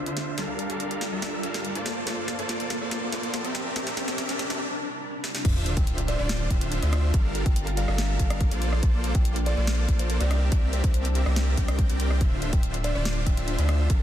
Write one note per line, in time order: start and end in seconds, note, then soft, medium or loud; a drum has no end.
0.00 0.36 D2 medium
0.00 1.83 D3 medium
0.00 0.36 C4 medium
0.00 1.83 F4 medium
0.00 0.36 E5 medium
0.00 riser medium
0.06 0.35 D3 medium
0.06 0.35 D4 medium
0.06 0.35 F4 medium
0.06 0.35 C5 medium
0.06 0.35 E5 medium
0.06 closed hi-hat medium
0.17 snare medium
0.17 closed hi-hat medium
0.38 1.84 G2 medium
0.38 0.67 G3 medium
0.38 1.84 A#3 medium
0.38 0.67 D4 medium
0.38 0.67 A4 medium
0.38 0.67 A#4 medium
0.38 0.67 F5 medium
0.38 3.52 A5 medium
0.38 snare medium
0.38 closed hi-hat medium
0.59 closed hi-hat medium
0.70 1.10 G3 medium
0.70 1.10 D4 medium
0.70 1.10 A4 medium
0.70 1.10 A#4 medium
0.70 1.10 F5 loud
0.70 closed hi-hat medium
0.80 closed hi-hat medium
0.91 closed hi-hat medium
1.01 snare medium
1.01 closed hi-hat medium
1.12 1.41 G3 medium
1.12 1.41 D4 medium
1.12 1.41 A4 medium
1.12 1.41 A#4 medium
1.12 1.41 E5 loud
1.22 snare medium
1.22 closed hi-hat medium
1.43 1.73 G3 medium
1.43 1.73 D4 medium
1.43 1.73 A4 medium
1.43 1.73 A#4 medium
1.43 1.73 F5 loud
1.43 closed hi-hat medium
1.54 snare medium
1.54 closed hi-hat medium
1.65 closed hi-hat medium
1.75 2.04 A#3 medium
1.75 2.04 F4 medium
1.75 2.04 A4 medium
1.75 2.04 C5 medium
1.75 2.04 D5 medium
1.75 closed hi-hat medium
1.86 3.53 A#2 medium
1.86 3.53 F3 medium
1.86 3.53 C4 medium
1.86 3.53 D4 medium
1.86 snare medium
1.86 closed hi-hat medium
2.07 2.36 A#3 medium
2.07 2.36 F4 medium
2.07 2.36 A4 medium
2.07 2.36 C5 medium
2.07 2.36 D5 medium
2.07 snare medium
2.07 closed hi-hat medium
2.28 snare medium
2.28 closed hi-hat medium
2.39 2.79 A#3 loud
2.39 2.79 F4 medium
2.39 2.79 A4 medium
2.39 2.79 C5 medium
2.39 2.79 D5 loud
2.39 closed hi-hat medium
2.49 snare medium
2.49 closed hi-hat medium
2.60 closed hi-hat medium
2.70 snare medium
2.70 closed hi-hat medium
2.81 3.10 A#3 medium
2.81 3.10 F4 medium
2.81 3.10 A4 medium
2.81 3.10 C5 medium
2.81 3.10 D5 loud
2.91 snare medium
2.91 closed hi-hat medium
3.12 3.42 A#3 medium
3.12 3.42 F4 medium
3.12 3.42 A4 medium
3.12 3.42 C5 medium
3.12 3.42 D5 loud
3.12 snare medium
3.12 closed hi-hat medium
3.23 closed hi-hat medium
3.34 snare medium
3.34 closed hi-hat medium
3.44 3.73 C4 medium
3.44 3.73 G4 medium
3.44 3.73 A#4 medium
3.44 3.73 D5 medium
3.44 3.73 E5 medium
3.44 closed hi-hat medium
3.55 5.43 C3 medium
3.55 5.43 G3 medium
3.55 5.43 D4 medium
3.55 5.43 E4 medium
3.55 5.43 A#4 medium
3.55 snare medium
3.55 closed hi-hat medium
3.76 4.05 C4 medium
3.76 4.05 G4 medium
3.76 4.05 A#4 medium
3.76 4.05 D5 medium
3.76 4.05 E5 loud
3.76 snare medium
3.76 closed hi-hat medium
3.87 snare medium
3.97 snare medium
3.97 closed hi-hat medium
4.08 4.48 C4 loud
4.08 4.48 G4 medium
4.08 4.48 A#4 medium
4.08 4.48 D5 medium
4.08 4.48 E5 loud
4.08 snare medium
4.08 closed hi-hat medium
4.18 snare loud
4.18 closed hi-hat medium
4.29 snare medium
4.29 closed hi-hat medium
4.39 snare loud
4.39 closed hi-hat medium
4.50 4.60 C4 medium
4.50 4.60 G4 medium
4.50 4.60 A#4 medium
4.50 4.60 D5 medium
4.50 4.60 E5 loud
4.50 snare medium
5.24 snare medium
5.35 snare medium
5.45 5.75 D1 loud
5.45 7.12 D3 medium
5.45 5.74 D3 medium
5.45 7.12 A3 medium
5.45 7.12 C4 medium
5.45 5.74 D4 medium
5.45 5.74 F4 medium
5.45 8.59 F4 loud
5.45 5.74 C5 medium
5.45 7.12 E5 medium
5.45 5.74 E5 loud
5.45 kick loud
5.45 closed hi-hat medium
5.45 crash loud
5.45 sub drop medium
5.66 closed hi-hat medium
5.77 6.17 D1 medium
5.77 6.17 D3 loud
5.77 6.17 D4 medium
5.77 6.17 F4 medium
5.77 6.17 C5 medium
5.77 6.17 E5 loud
5.77 5.95 G5 medium
5.77 kick loud
5.77 closed hi-hat medium
5.87 closed hi-hat medium
5.98 closed hi-hat medium
6.08 6.17 D5 medium
6.08 closed hi-hat medium
6.19 6.48 D1 loud
6.19 6.48 D3 medium
6.19 6.48 D4 medium
6.19 6.48 F4 medium
6.19 6.48 C5 medium
6.19 6.48 D5 loud
6.19 6.37 D5 medium
6.29 snare loud
6.29 closed hi-hat medium
6.50 6.80 D1 loud
6.50 6.80 D3 medium
6.50 6.80 D4 medium
6.50 6.80 F4 medium
6.50 6.80 C5 medium
6.50 6.80 E5 loud
6.50 6.58 G5 medium
6.50 kick medium
6.50 closed hi-hat medium
6.61 6.68 G5 medium
6.61 closed hi-hat medium
6.72 closed hi-hat medium
6.82 7.12 D2 loud
6.82 7.11 D3 medium
6.82 7.11 D4 medium
6.82 7.11 F4 medium
6.82 7.11 C5 medium
6.82 7.11 E5 medium
6.82 closed hi-hat medium
6.93 cross-stick medium
6.93 closed hi-hat medium
7.14 7.44 G1 loud
7.14 8.60 G3 medium
7.14 7.43 G3 medium
7.14 8.60 A#3 loud
7.14 12.17 D4 medium
7.14 7.43 D4 medium
7.14 7.43 A4 medium
7.14 7.43 A#4 medium
7.14 7.43 F5 loud
7.14 8.60 A5 medium
7.14 kick loud
7.14 closed hi-hat medium
7.35 closed hi-hat medium
7.46 7.86 G1 medium
7.46 7.86 G3 loud
7.46 7.86 D4 medium
7.46 7.86 A4 medium
7.46 7.86 A#4 medium
7.46 7.86 F5 loud
7.46 7.52 G5 medium
7.46 kick loud
7.46 closed hi-hat medium
7.56 7.63 G5 medium
7.56 closed hi-hat medium
7.67 closed hi-hat medium
7.77 7.84 F5 medium
7.77 closed hi-hat medium
7.88 8.18 G1 loud
7.88 8.17 G3 medium
7.88 8.17 D4 medium
7.88 8.17 A4 medium
7.88 8.17 A#4 medium
7.88 8.17 E5 loud
7.88 7.95 F5 medium
7.88 cross-stick medium
7.98 snare loud
7.98 closed hi-hat medium
8.20 8.49 G1 loud
8.20 8.49 G3 medium
8.20 8.49 D4 medium
8.20 8.49 A4 medium
8.20 8.49 A#4 medium
8.20 8.49 F5 loud
8.20 kick medium
8.20 closed hi-hat medium
8.30 cross-stick medium
8.30 closed hi-hat medium
8.41 kick loud
8.41 closed hi-hat medium
8.51 8.81 A#1 loud
8.51 8.81 A#3 medium
8.51 8.80 F4 medium
8.51 8.81 A4 medium
8.51 8.80 C5 medium
8.51 8.80 D5 medium
8.51 closed hi-hat medium
8.62 12.17 A#3 medium
8.62 10.29 A4 medium
8.62 closed hi-hat medium
8.73 cross-stick medium
8.83 9.13 A#1 loud
8.83 9.12 A#3 medium
8.83 9.12 F4 medium
8.83 9.12 A4 medium
8.83 9.12 C5 medium
8.83 9.12 D5 loud
8.83 kick loud
8.83 closed hi-hat medium
9.04 closed hi-hat medium
9.15 9.55 A#1 medium
9.15 9.55 A#3 loud
9.15 9.55 F4 medium
9.15 9.55 A4 medium
9.15 9.55 C5 medium
9.15 9.55 D5 loud
9.15 9.33 G5 loud
9.15 kick loud
9.15 closed hi-hat medium
9.25 closed hi-hat medium
9.36 closed hi-hat medium
9.46 9.55 D5 medium
9.46 closed hi-hat medium
9.57 9.87 A#1 loud
9.57 9.86 A#3 medium
9.57 9.86 F4 medium
9.57 9.86 A4 medium
9.57 9.86 C5 medium
9.57 9.75 D5 medium
9.57 9.86 D5 loud
9.67 snare loud
9.67 closed hi-hat medium
9.89 10.18 A#1 loud
9.89 10.18 A#3 medium
9.89 10.18 F4 medium
9.89 10.18 A4 medium
9.89 10.18 C5 medium
9.89 10.18 D5 loud
9.89 kick medium
9.89 closed hi-hat medium
9.99 10.17 C5 medium
9.99 closed hi-hat medium
10.10 closed hi-hat medium
10.21 10.50 C2 loud
10.21 10.50 C4 medium
10.21 10.50 G4 medium
10.21 10.50 A#4 medium
10.21 10.50 D5 medium
10.21 10.35 D5 medium
10.21 10.50 E5 medium
10.21 closed hi-hat medium
10.31 12.19 C3 medium
10.31 12.19 G3 medium
10.31 13.86 E5 medium
10.31 cross-stick medium
10.31 closed hi-hat medium
10.52 10.82 C2 medium
10.52 10.81 C4 medium
10.52 10.81 G4 medium
10.52 10.81 A#4 medium
10.52 10.81 D5 medium
10.52 10.81 E5 medium
10.52 kick loud
10.52 closed hi-hat medium
10.73 10.91 C5 medium
10.73 closed hi-hat medium
10.84 11.24 C2 loud
10.84 11.24 C4 loud
10.84 11.24 G4 medium
10.84 11.24 A#4 medium
10.84 11.24 D5 medium
10.84 11.24 E5 loud
10.84 kick loud
10.84 closed hi-hat medium
10.94 11.36 C5 medium
10.94 closed hi-hat medium
11.05 closed hi-hat medium
11.15 closed hi-hat medium
11.26 11.56 C2 loud
11.26 11.55 C4 medium
11.26 11.55 G4 medium
11.26 11.55 A#4 medium
11.26 11.55 D5 medium
11.26 11.55 E5 loud
11.26 cross-stick medium
11.36 snare loud
11.36 closed hi-hat medium
11.57 11.87 C2 loud
11.57 11.87 C4 medium
11.57 11.87 G4 medium
11.57 11.87 A#4 medium
11.57 11.87 D5 medium
11.57 11.87 G5 loud
11.57 kick medium
11.57 closed hi-hat medium
11.68 cross-stick medium
11.68 closed hi-hat medium
11.79 kick loud
11.79 closed hi-hat medium
11.90 12.22 C2 loud
11.90 12.19 C4 medium
11.90 12.19 G4 medium
11.90 12.19 A#4 medium
11.90 12.19 D5 medium
11.90 12.19 G5 medium
11.90 closed hi-hat medium
12.00 closed hi-hat medium
12.11 cross-stick medium
12.21 12.51 D1 medium
12.21 12.50 D3 medium
12.21 13.88 D3 medium
12.21 13.88 A3 medium
12.21 13.88 C4 medium
12.21 12.50 D4 medium
12.21 12.50 F4 medium
12.21 14.03 F4 loud
12.21 12.50 C5 medium
12.21 12.50 E5 loud
12.21 kick loud
12.21 closed hi-hat medium
12.42 closed hi-hat medium
12.53 12.93 D1 loud
12.53 12.93 D3 loud
12.53 12.93 D4 medium
12.53 12.93 F4 medium
12.53 12.93 C5 medium
12.53 12.93 E5 loud
12.53 12.71 G5 medium
12.53 kick loud
12.53 closed hi-hat medium
12.63 closed hi-hat medium
12.74 closed hi-hat medium
12.84 12.93 D5 medium
12.84 closed hi-hat medium
12.95 13.25 D1 loud
12.95 13.24 D3 medium
12.95 13.24 D4 medium
12.95 13.24 F4 medium
12.95 13.24 C5 medium
12.95 13.24 D5 loud
12.95 13.13 D5 medium
13.05 snare loud
13.05 closed hi-hat medium
13.27 13.56 D1 loud
13.27 13.56 D3 medium
13.27 13.56 D4 medium
13.27 13.56 F4 medium
13.27 13.56 C5 medium
13.27 13.56 E5 loud
13.27 13.34 G5 medium
13.27 kick medium
13.27 closed hi-hat medium
13.37 13.44 G5 medium
13.37 closed hi-hat medium
13.48 closed hi-hat medium
13.59 13.88 D2 loud
13.59 13.88 D3 medium
13.59 13.88 D4 medium
13.59 13.88 F4 medium
13.59 13.88 C5 medium
13.59 13.88 E5 medium
13.59 closed hi-hat medium
13.69 cross-stick medium
13.69 closed hi-hat medium
13.90 14.03 G1 loud
13.90 14.03 G3 medium
13.90 14.03 A#3 medium
13.90 14.03 D4 medium
13.90 14.03 A4 medium
13.90 14.03 A#4 medium
13.90 14.03 F5 loud
13.90 14.03 A5 medium
13.90 kick loud
13.90 closed hi-hat medium